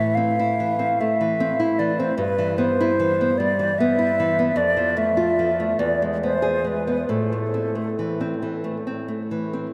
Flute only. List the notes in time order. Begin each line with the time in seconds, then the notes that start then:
Already playing: E5
0.15 F5
1.00 E5
1.79 D5
1.99 C5
2.18 B4
2.58 C5
3.38 D5
3.79 E5
4.57 D5
4.98 E5
5.79 D5
6.23 C5
6.67 B4
7.10 A4